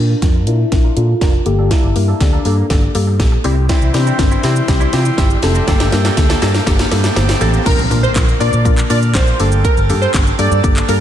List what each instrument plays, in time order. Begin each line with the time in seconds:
Already playing: fingered electric bass A#2, synth pluck D4 F4 A#4, soft synth lead D4, riser
0.10 clean electric guitar D4 F4 A#4
0.22 fingered electric bass F2, synth pluck D4 F4 A#4, muted clean electric guitar stroke, kick, snare, closed hi-hat
0.34 clean electric guitar D4 F4 A#4
0.47 fingered electric bass A#2, synth pluck D4 F4 A#4, clean electric guitar D4 F4 A#4, soft synth lead E4, closed hi-hat
0.59 muted clean electric guitar stroke
0.72 fingered electric bass A#1, synth pluck D4 F4 A#4, kick, snare, closed hi-hat
0.84 clean electric guitar D4 F4 A#4
0.96 fingered electric bass A#2, synth pluck D4 F4 A4, clean electric guitar D4 F4 A#4, soft synth lead F4, closed hi-hat
1.09 muted clean electric guitar stroke
1.21 fingered electric bass F1, synth pluck D4 F4 A#4, clean electric guitar D4 F4 A#4, kick, snare, closed hi-hat
1.34 muted clean electric guitar stroke
1.46 fingered electric bass G1, synth pluck A#3 G4 A4, soft synth lead G4, muted clean electric guitar stroke, closed hi-hat
1.59 clean electric guitar A#3 D4 A4
1.71 clean electric guitar A#3 D4 A4, soft synth lead E4, kick, snare, closed hi-hat
1.84 fingered electric bass G1
1.96 fingered electric bass G2, synth pluck A#3 G4 A#4, muted clean electric guitar stroke, open hi-hat
2.08 clean electric guitar A#3 D4 A4
2.20 fingered electric bass D2, synth pluck A#3 G4 A4, soft synth lead D4, kick, snare, closed hi-hat
2.33 clean electric guitar A#3 D4 A4
2.45 fingered electric bass G2, synth pluck A#3 G4 A4, clean electric guitar A#3 D4 A4, open hi-hat
2.58 muted clean electric guitar stroke
2.70 fingered electric bass G1, synth pluck A#3 G4 A4, kick, snare, closed hi-hat
2.82 muted clean electric guitar stroke
2.95 fingered electric bass G2, synth pluck A#3 G4 A4, open hi-hat
3.07 muted clean electric guitar stroke
3.20 fingered electric bass A#1, synth pluck A#3 G4 A4, kick, snare, closed hi-hat
3.32 muted clean electric guitar stroke
3.44 fingered electric bass C2, clean electric guitar G3 C4 E4, synth pluck C4 E4 G4, open hi-hat
3.57 muted clean electric guitar stroke
3.69 pipe organ E3 C4 G4, clean electric guitar G3 C4 E4, soft synth lead E4, kick, snare, closed hi-hat, shaker
3.82 fingered electric bass C2, shaker
3.94 fingered electric bass C3, synth pluck C4 E4 G4, soft synth lead D4, muted clean electric guitar stroke, snare, open hi-hat, shaker
4.06 clean electric guitar G3 C4 E4, shaker
4.19 fingered electric bass G1, synth pluck C4 E4 A#4, muted clean electric guitar stroke, kick, snare, closed hi-hat, shaker
4.31 clean electric guitar G3 C4 E4, shaker
4.43 fingered electric bass C3, clean electric guitar G3 C4 E4, synth pluck C4 E4 G4, soft synth lead E4, snare, open hi-hat, shaker
4.56 muted clean electric guitar stroke, shaker
4.68 fingered electric bass C2, synth pluck C4 E4 G4, muted clean electric guitar stroke, kick, snare, closed hi-hat, shaker
4.80 clean electric guitar G3 C4 E4, shaker
4.93 fingered electric bass C3, clean electric guitar G3 C4 E4, synth pluck C4 E4 G4, soft synth lead F4, snare, open hi-hat, shaker
5.05 soft synth lead E4, muted clean electric guitar stroke, shaker
5.18 fingered electric bass G1, clean electric guitar G3 C4 E4, synth pluck C4 E4 G4, kick, snare, closed hi-hat, shaker
5.30 muted clean electric guitar stroke, shaker
5.43 fingered electric bass F1, synth pluck C4 E4 G4, soft synth lead A4, muted clean electric guitar stroke, snare, open hi-hat, shaker
5.55 clean electric guitar G3 C4 E4, shaker
5.67 fingered electric bass G1, pipe organ A#2 A3 G4, synth pluck A#3 G4 A4, clean electric guitar A#3 D4 A4, soft synth lead G4, kick, snare, closed hi-hat, shaker
5.80 fingered electric bass G1, snare, shaker
5.92 fingered electric bass G2, synth pluck A#3 G4 A#4, muted clean electric guitar stroke, snare, open hi-hat, shaker
6.05 clean electric guitar A#3 D4 A4, snare, shaker
6.17 fingered electric bass D2, synth pluck A#3 G4 A4, muted clean electric guitar stroke, kick, snare, closed hi-hat, shaker
6.29 clean electric guitar A#3 D4 A4, snare, shaker
6.42 fingered electric bass G2, clean electric guitar A#3 D4 A4, synth pluck A#3 G4 A4, snare, open hi-hat, shaker
6.54 muted clean electric guitar stroke, snare, shaker
6.66 fingered electric bass G1, synth pluck A#3 G4 A4, muted clean electric guitar stroke, kick, snare, closed hi-hat, shaker
6.79 muted clean electric guitar stroke, snare, shaker
6.91 fingered electric bass G2, synth pluck A#3 G4 A4, snare, open hi-hat, shaker
7.04 muted clean electric guitar stroke, snare, shaker
7.16 fingered electric bass G1, synth pluck A#3 G4 C5, muted clean electric guitar stroke, snare, closed hi-hat, shaker
7.29 muted clean electric guitar stroke, snare, shaker
7.41 fingered electric bass A1, synth pluck A#3 G4 A4, clean electric guitar A#3 D4 A4, open hi-hat, shaker
7.53 muted clean electric guitar stroke, shaker
7.65 fingered electric bass A#1, pipe organ D3 A#3 F4, synth pluck A#3 D4 F4 A#4, digital synth lead A#4, kick, closed hi-hat, crash, impact, shaker
7.79 fingered electric bass A#1, shaker
7.90 fingered electric bass A#2, synth pluck A#3 D4 F4 A#4, open hi-hat, shaker
8.03 digital synth lead C5, shaker
8.15 fingered electric bass A#1, synth pluck A#3 D4 F4 A#4, kick, snare, clap, closed hi-hat, shaker
8.28 shaker
8.40 fingered electric bass A#2, synth pluck A#3 D4 F4 A#4, digital synth lead D5, open hi-hat, shaker
8.53 fingered electric bass A#2, shaker
8.65 fingered electric bass A#1, synth pluck A#3 D4 F4 A#4, kick, closed hi-hat, shaker
8.78 clap, shaker
8.90 fingered electric bass A#2, synth pluck A#3 D4 F4 A#4, digital synth lead D5, open hi-hat, shaker
9.02 shaker
9.14 fingered electric bass A#1, synth pluck A#3 D4 F4 A#4, digital synth lead C5, kick, snare, clap, closed hi-hat, shaker
9.27 shaker
9.40 fingered electric bass G1, pipe organ G3 A4, synth pluck A#3 D4 G4 A4, open hi-hat, shaker
9.52 shaker
9.64 digital synth lead A#4, kick, closed hi-hat, shaker
9.77 fingered electric bass G1, shaker
9.89 fingered electric bass G2, synth pluck A#3 D4 G4 A4, open hi-hat, shaker
10.02 digital synth lead C5, shaker
10.14 fingered electric bass G1, synth pluck A#3 D4 G4 A4, kick, snare, clap, closed hi-hat, shaker
10.27 shaker
10.39 fingered electric bass G2, synth pluck A#3 D4 G4 A4, digital synth lead D5, open hi-hat, shaker
10.51 fingered electric bass G2, shaker
10.63 fingered electric bass G1, synth pluck A#3 D4 G4 A4, kick, closed hi-hat, shaker
10.76 clap, shaker
10.88 fingered electric bass G2, synth pluck A#3 D4 G4 A4, digital synth lead A#4, open hi-hat, shaker